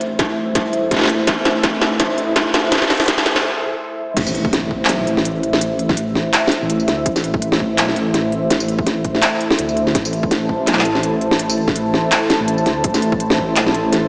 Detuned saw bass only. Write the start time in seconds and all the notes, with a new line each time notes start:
Already playing: A1
0.83 A1
1.09 D2
1.27 A1
2.00 B1
2.18 A1
2.72 A1
4.17 A1
4.89 B1
5.07 A1
5.61 A1
6.62 A1
6.88 D2
7.06 A1
7.78 B1
7.96 A1
8.50 A1
9.59 D2
9.95 A1
10.67 B1
10.85 A1
11.40 A1
12.40 A1
12.66 D2
12.84 A1
13.57 B1
13.75 A1